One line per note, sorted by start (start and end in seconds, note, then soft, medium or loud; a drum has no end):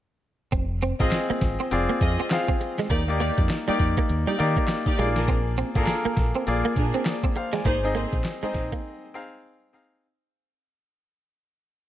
0.52 0.92 F1 loud
0.52 0.64 C4 medium
0.52 kick loud
0.52 closed hi-hat medium
0.82 0.94 C4 medium
0.82 closed hi-hat medium
1.00 1.10 G#1 medium
1.00 1.61 C4 medium
1.00 1.13 F4 medium
1.00 1.61 F4 medium
1.00 1.13 G#4 medium
1.00 1.61 G#4 medium
1.00 1.13 D#5 medium
1.00 1.61 D#5 medium
1.00 muted clean electric guitar stroke soft
1.00 kick loud
1.00 closed hi-hat soft
1.11 snare loud
1.11 clap medium
1.11 closed hi-hat medium
1.30 1.37 A#3 medium
1.30 muted fingered electric bass stroke soft
1.41 1.56 G#1 medium
1.41 muted clean electric guitar stroke soft
1.41 kick medium
1.41 snare medium
1.41 closed hi-hat medium
1.59 1.67 C4 medium
1.59 closed hi-hat medium
1.71 1.86 F1 medium
1.71 2.22 C4 medium
1.71 2.22 F4 medium
1.71 2.23 G#4 medium
1.71 2.23 D5 medium
1.71 closed hi-hat medium
1.90 1.97 A#3 medium
2.01 2.16 F2 loud
2.01 2.19 F4 medium
2.01 2.20 G#4 medium
2.01 2.20 D#5 medium
2.01 muted clean electric guitar stroke soft
2.01 kick medium
2.01 closed hi-hat medium
2.19 2.27 C4 medium
2.19 closed hi-hat medium
2.30 2.90 C4 medium
2.30 2.91 F4 medium
2.30 2.91 G#4 medium
2.30 2.91 F5 medium
2.30 snare loud
2.30 clap medium
2.30 closed hi-hat medium
2.48 2.56 C4 medium
2.48 kick medium
2.61 muted clean electric guitar stroke soft
2.61 closed hi-hat medium
2.78 2.87 G#3 medium
2.78 snare medium
2.78 closed hi-hat medium
2.90 3.29 D#2 loud
2.90 3.02 A#3 medium
2.90 3.09 D#4 loud
2.90 3.09 G4 medium
2.90 3.09 D5 loud
2.90 kick loud
2.90 closed hi-hat medium
3.08 3.54 A#3 medium
3.08 3.55 D#4 medium
3.08 3.55 G4 medium
3.08 3.55 D5 loud
3.20 3.32 A#3 medium
3.20 3.38 D#4 medium
3.20 3.39 G4 medium
3.20 3.39 D5 medium
3.20 closed hi-hat medium
3.38 3.48 F2 medium
3.38 muted clean electric guitar stroke soft
3.38 kick loud
3.38 closed hi-hat soft
3.49 snare medium
3.49 clap medium
3.49 closed hi-hat medium
3.68 3.75 G3 medium
3.68 4.28 A#3 medium
3.68 3.80 D#4 medium
3.68 4.28 D#4 medium
3.68 3.81 G4 medium
3.68 4.29 G4 medium
3.68 3.81 D5 medium
3.68 4.29 D5 medium
3.68 muted fingered electric bass stroke soft
3.79 3.94 F2 medium
3.79 muted clean electric guitar stroke soft
3.79 kick medium
3.79 closed hi-hat medium
3.97 4.05 A#3 medium
3.97 kick medium
3.97 closed hi-hat medium
4.09 4.24 D#2 medium
4.09 closed hi-hat medium
4.27 4.35 G3 medium
4.27 4.40 D#4 medium
4.27 4.40 G4 medium
4.27 4.40 D5 medium
4.39 4.54 D#3 medium
4.39 4.89 A#3 medium
4.39 4.90 D#4 medium
4.39 4.90 G4 medium
4.39 4.90 D5 loud
4.39 muted clean electric guitar stroke soft
4.39 closed hi-hat medium
4.57 4.64 A#3 medium
4.57 kick medium
4.57 closed hi-hat medium
4.67 snare loud
4.67 clap medium
4.67 closed hi-hat medium
4.86 4.99 D#4 medium
4.86 4.99 G4 medium
4.86 4.99 D5 medium
4.86 kick loud
4.98 5.62 A#1 medium
4.98 5.10 G#3 medium
4.98 5.59 A#3 medium
4.98 5.59 F4 medium
4.98 5.60 G#4 medium
4.98 5.60 D5 loud
4.98 closed hi-hat medium
5.16 5.29 D4 medium
5.16 5.29 G#4 medium
5.16 5.29 A#4 medium
5.16 snare medium
5.16 closed hi-hat medium
5.28 5.40 C4 medium
5.28 kick loud
5.28 closed hi-hat medium
5.58 5.69 C4 medium
5.58 closed hi-hat medium
5.75 5.85 G#1 medium
5.75 6.36 A#3 medium
5.75 5.88 D4 medium
5.75 6.36 F4 medium
5.75 5.88 G#4 medium
5.75 6.36 G#4 medium
5.75 5.81 A4 medium
5.75 5.89 A#4 medium
5.75 muted clean electric guitar stroke soft
5.75 kick loud
5.75 closed hi-hat soft
5.83 6.40 A#4 loud
5.83 snare loud
5.83 clap medium
5.83 closed hi-hat medium
6.05 6.13 A#3 medium
6.05 muted fingered electric bass stroke soft
6.17 6.32 A#1 medium
6.17 muted clean electric guitar stroke soft
6.17 kick medium
6.17 snare medium
6.17 closed hi-hat medium
6.34 6.43 C4 medium
6.34 closed hi-hat medium
6.47 6.62 A#1 medium
6.47 6.97 A#3 medium
6.47 6.98 F4 medium
6.47 6.98 G#4 medium
6.47 6.98 D5 loud
6.47 closed hi-hat medium
6.65 6.72 A#3 medium
6.76 6.91 A#2 loud
6.76 6.95 D4 medium
6.76 6.95 G#4 medium
6.76 6.95 A#4 medium
6.76 muted clean electric guitar stroke soft
6.76 kick medium
6.76 closed hi-hat medium
6.94 7.02 C4 medium
6.94 closed hi-hat medium
7.05 7.35 G#4 medium
7.05 7.35 D5 medium
7.05 snare loud
7.05 clap medium
7.05 closed hi-hat medium
7.24 7.31 C4 medium
7.24 kick loud
7.36 7.53 C5 medium
7.36 7.53 F5 medium
7.36 muted clean electric guitar stroke soft
7.36 closed hi-hat medium
7.53 7.61 G#3 medium
7.53 7.83 D5 medium
7.53 7.82 G#5 medium
7.53 snare medium
7.53 closed hi-hat medium
7.65 8.05 G#1 medium
7.65 7.77 A#3 medium
7.65 7.84 D#4 loud
7.65 7.84 G#4 loud
7.65 7.84 C5 loud
7.65 kick loud
7.65 closed hi-hat medium
7.83 8.30 C4 medium
7.83 8.30 D#4 medium
7.83 8.30 G#4 medium
7.83 8.30 D#5 medium
7.95 8.06 A#3 medium
7.95 8.14 D#4 medium
7.95 8.14 G#4 medium
7.95 8.14 C5 medium
7.95 closed hi-hat medium
8.12 8.23 A#1 medium
8.12 muted clean electric guitar stroke soft
8.12 kick loud
8.12 closed hi-hat soft
8.24 snare loud
8.24 clap medium
8.24 closed hi-hat medium
8.43 8.50 G#3 medium
8.43 9.03 C4 medium
8.43 8.56 D#4 medium
8.43 9.04 D#4 medium
8.43 8.56 G#4 medium
8.43 9.04 G#4 medium
8.43 8.56 C5 medium
8.43 9.04 D#5 medium
8.43 muted fingered electric bass stroke soft
8.54 8.69 A#1 medium
8.54 muted clean electric guitar stroke soft
8.54 kick medium
8.54 snare medium
8.54 closed hi-hat medium
8.72 8.80 A#3 medium
8.72 kick loud
8.72 closed hi-hat medium
9.14 9.65 C4 medium
9.14 9.65 D#4 medium
9.14 9.65 G#4 medium
9.14 9.65 F5 loud
9.73 10.03 C4 loud
9.73 10.03 D#4 loud
9.73 10.03 G#4 medium
9.73 10.03 F5 loud